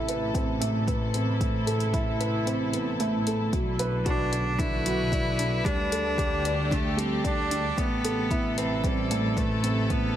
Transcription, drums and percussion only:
0, 0, Header, 1, 2, 480
1, 0, Start_track
1, 0, Tempo, 530973
1, 1272, Time_signature, 4, 2, 24, 8
1, 9188, End_track
2, 0, Start_track
2, 0, Title_t, "Drums"
2, 77, Note_on_c, 9, 42, 57
2, 167, Note_off_c, 9, 42, 0
2, 313, Note_on_c, 9, 36, 98
2, 316, Note_on_c, 9, 42, 38
2, 403, Note_off_c, 9, 36, 0
2, 407, Note_off_c, 9, 42, 0
2, 557, Note_on_c, 9, 42, 58
2, 647, Note_off_c, 9, 42, 0
2, 792, Note_on_c, 9, 36, 84
2, 796, Note_on_c, 9, 42, 36
2, 882, Note_off_c, 9, 36, 0
2, 886, Note_off_c, 9, 42, 0
2, 1032, Note_on_c, 9, 42, 55
2, 1122, Note_off_c, 9, 42, 0
2, 1272, Note_on_c, 9, 36, 98
2, 1274, Note_on_c, 9, 42, 37
2, 1362, Note_off_c, 9, 36, 0
2, 1365, Note_off_c, 9, 42, 0
2, 1513, Note_on_c, 9, 42, 51
2, 1603, Note_off_c, 9, 42, 0
2, 1631, Note_on_c, 9, 42, 27
2, 1721, Note_off_c, 9, 42, 0
2, 1751, Note_on_c, 9, 36, 94
2, 1752, Note_on_c, 9, 42, 37
2, 1842, Note_off_c, 9, 36, 0
2, 1843, Note_off_c, 9, 42, 0
2, 1994, Note_on_c, 9, 42, 55
2, 2085, Note_off_c, 9, 42, 0
2, 2234, Note_on_c, 9, 42, 38
2, 2325, Note_off_c, 9, 42, 0
2, 2472, Note_on_c, 9, 42, 57
2, 2563, Note_off_c, 9, 42, 0
2, 2711, Note_on_c, 9, 42, 36
2, 2801, Note_off_c, 9, 42, 0
2, 2954, Note_on_c, 9, 42, 53
2, 3044, Note_off_c, 9, 42, 0
2, 3191, Note_on_c, 9, 36, 103
2, 3192, Note_on_c, 9, 42, 39
2, 3281, Note_off_c, 9, 36, 0
2, 3282, Note_off_c, 9, 42, 0
2, 3430, Note_on_c, 9, 42, 61
2, 3520, Note_off_c, 9, 42, 0
2, 3670, Note_on_c, 9, 42, 39
2, 3671, Note_on_c, 9, 36, 99
2, 3760, Note_off_c, 9, 42, 0
2, 3761, Note_off_c, 9, 36, 0
2, 3911, Note_on_c, 9, 42, 58
2, 4002, Note_off_c, 9, 42, 0
2, 4149, Note_on_c, 9, 36, 101
2, 4154, Note_on_c, 9, 42, 40
2, 4239, Note_off_c, 9, 36, 0
2, 4245, Note_off_c, 9, 42, 0
2, 4393, Note_on_c, 9, 42, 54
2, 4483, Note_off_c, 9, 42, 0
2, 4629, Note_on_c, 9, 36, 94
2, 4636, Note_on_c, 9, 42, 37
2, 4719, Note_off_c, 9, 36, 0
2, 4727, Note_off_c, 9, 42, 0
2, 4873, Note_on_c, 9, 42, 53
2, 4963, Note_off_c, 9, 42, 0
2, 5108, Note_on_c, 9, 36, 108
2, 5116, Note_on_c, 9, 42, 40
2, 5198, Note_off_c, 9, 36, 0
2, 5207, Note_off_c, 9, 42, 0
2, 5354, Note_on_c, 9, 42, 57
2, 5445, Note_off_c, 9, 42, 0
2, 5588, Note_on_c, 9, 36, 105
2, 5596, Note_on_c, 9, 42, 39
2, 5679, Note_off_c, 9, 36, 0
2, 5686, Note_off_c, 9, 42, 0
2, 5833, Note_on_c, 9, 42, 65
2, 5923, Note_off_c, 9, 42, 0
2, 6070, Note_on_c, 9, 36, 103
2, 6077, Note_on_c, 9, 42, 41
2, 6160, Note_off_c, 9, 36, 0
2, 6167, Note_off_c, 9, 42, 0
2, 6315, Note_on_c, 9, 42, 58
2, 6406, Note_off_c, 9, 42, 0
2, 6550, Note_on_c, 9, 36, 97
2, 6553, Note_on_c, 9, 42, 39
2, 6640, Note_off_c, 9, 36, 0
2, 6643, Note_off_c, 9, 42, 0
2, 6792, Note_on_c, 9, 42, 62
2, 6882, Note_off_c, 9, 42, 0
2, 7030, Note_on_c, 9, 36, 100
2, 7034, Note_on_c, 9, 42, 41
2, 7120, Note_off_c, 9, 36, 0
2, 7125, Note_off_c, 9, 42, 0
2, 7273, Note_on_c, 9, 42, 58
2, 7364, Note_off_c, 9, 42, 0
2, 7509, Note_on_c, 9, 36, 106
2, 7514, Note_on_c, 9, 42, 43
2, 7599, Note_off_c, 9, 36, 0
2, 7604, Note_off_c, 9, 42, 0
2, 7754, Note_on_c, 9, 42, 65
2, 7845, Note_off_c, 9, 42, 0
2, 7988, Note_on_c, 9, 36, 114
2, 7995, Note_on_c, 9, 42, 40
2, 8079, Note_off_c, 9, 36, 0
2, 8086, Note_off_c, 9, 42, 0
2, 8235, Note_on_c, 9, 42, 60
2, 8325, Note_off_c, 9, 42, 0
2, 8470, Note_on_c, 9, 36, 98
2, 8475, Note_on_c, 9, 42, 39
2, 8560, Note_off_c, 9, 36, 0
2, 8565, Note_off_c, 9, 42, 0
2, 8713, Note_on_c, 9, 42, 57
2, 8803, Note_off_c, 9, 42, 0
2, 8950, Note_on_c, 9, 36, 102
2, 8951, Note_on_c, 9, 42, 43
2, 9040, Note_off_c, 9, 36, 0
2, 9042, Note_off_c, 9, 42, 0
2, 9188, End_track
0, 0, End_of_file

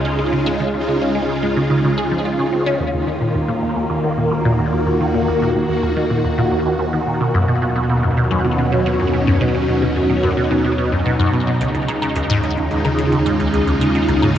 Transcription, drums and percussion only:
0, 0, Header, 1, 2, 480
1, 0, Start_track
1, 0, Key_signature, -6, "minor"
1, 0, Tempo, 550459
1, 524, Time_signature, 4, 2, 24, 8
1, 12541, End_track
2, 0, Start_track
2, 0, Title_t, "Drums"
2, 10125, Note_on_c, 9, 42, 93
2, 10212, Note_off_c, 9, 42, 0
2, 10245, Note_on_c, 9, 42, 35
2, 10332, Note_off_c, 9, 42, 0
2, 10365, Note_on_c, 9, 42, 62
2, 10365, Note_on_c, 9, 77, 52
2, 10452, Note_off_c, 9, 42, 0
2, 10452, Note_off_c, 9, 77, 0
2, 10485, Note_on_c, 9, 42, 39
2, 10485, Note_on_c, 9, 77, 76
2, 10572, Note_off_c, 9, 42, 0
2, 10572, Note_off_c, 9, 77, 0
2, 10602, Note_on_c, 9, 42, 95
2, 10689, Note_off_c, 9, 42, 0
2, 10725, Note_on_c, 9, 42, 38
2, 10812, Note_off_c, 9, 42, 0
2, 10844, Note_on_c, 9, 42, 36
2, 10931, Note_off_c, 9, 42, 0
2, 10966, Note_on_c, 9, 42, 39
2, 11053, Note_off_c, 9, 42, 0
2, 11084, Note_on_c, 9, 42, 87
2, 11171, Note_off_c, 9, 42, 0
2, 11206, Note_on_c, 9, 42, 39
2, 11206, Note_on_c, 9, 77, 74
2, 11293, Note_off_c, 9, 42, 0
2, 11293, Note_off_c, 9, 77, 0
2, 11325, Note_on_c, 9, 42, 62
2, 11412, Note_off_c, 9, 42, 0
2, 11445, Note_on_c, 9, 42, 39
2, 11533, Note_off_c, 9, 42, 0
2, 11566, Note_on_c, 9, 42, 89
2, 11653, Note_off_c, 9, 42, 0
2, 11686, Note_on_c, 9, 42, 40
2, 11773, Note_off_c, 9, 42, 0
2, 11805, Note_on_c, 9, 42, 65
2, 11893, Note_off_c, 9, 42, 0
2, 11925, Note_on_c, 9, 42, 42
2, 12012, Note_off_c, 9, 42, 0
2, 12044, Note_on_c, 9, 42, 87
2, 12132, Note_off_c, 9, 42, 0
2, 12164, Note_on_c, 9, 42, 35
2, 12252, Note_off_c, 9, 42, 0
2, 12281, Note_on_c, 9, 42, 64
2, 12281, Note_on_c, 9, 77, 53
2, 12369, Note_off_c, 9, 42, 0
2, 12369, Note_off_c, 9, 77, 0
2, 12403, Note_on_c, 9, 42, 39
2, 12403, Note_on_c, 9, 77, 73
2, 12490, Note_off_c, 9, 42, 0
2, 12490, Note_off_c, 9, 77, 0
2, 12541, End_track
0, 0, End_of_file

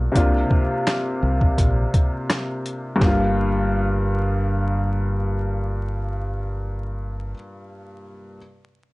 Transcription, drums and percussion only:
0, 0, Header, 1, 2, 480
1, 0, Start_track
1, 0, Key_signature, -2, "minor"
1, 0, Tempo, 714286
1, 103, Time_signature, 4, 2, 24, 8
1, 6001, End_track
2, 0, Start_track
2, 0, Title_t, "Drums"
2, 104, Note_on_c, 9, 36, 111
2, 105, Note_on_c, 9, 42, 90
2, 171, Note_off_c, 9, 36, 0
2, 172, Note_off_c, 9, 42, 0
2, 340, Note_on_c, 9, 36, 89
2, 407, Note_off_c, 9, 36, 0
2, 583, Note_on_c, 9, 42, 77
2, 584, Note_on_c, 9, 37, 89
2, 586, Note_on_c, 9, 38, 112
2, 650, Note_off_c, 9, 42, 0
2, 651, Note_off_c, 9, 37, 0
2, 653, Note_off_c, 9, 38, 0
2, 948, Note_on_c, 9, 36, 91
2, 1016, Note_off_c, 9, 36, 0
2, 1062, Note_on_c, 9, 36, 85
2, 1064, Note_on_c, 9, 42, 81
2, 1129, Note_off_c, 9, 36, 0
2, 1131, Note_off_c, 9, 42, 0
2, 1303, Note_on_c, 9, 42, 58
2, 1304, Note_on_c, 9, 36, 95
2, 1371, Note_off_c, 9, 36, 0
2, 1371, Note_off_c, 9, 42, 0
2, 1543, Note_on_c, 9, 37, 96
2, 1545, Note_on_c, 9, 38, 115
2, 1545, Note_on_c, 9, 42, 78
2, 1610, Note_off_c, 9, 37, 0
2, 1612, Note_off_c, 9, 42, 0
2, 1613, Note_off_c, 9, 38, 0
2, 1786, Note_on_c, 9, 42, 49
2, 1853, Note_off_c, 9, 42, 0
2, 2023, Note_on_c, 9, 36, 104
2, 2026, Note_on_c, 9, 38, 85
2, 2090, Note_off_c, 9, 36, 0
2, 2093, Note_off_c, 9, 38, 0
2, 6001, End_track
0, 0, End_of_file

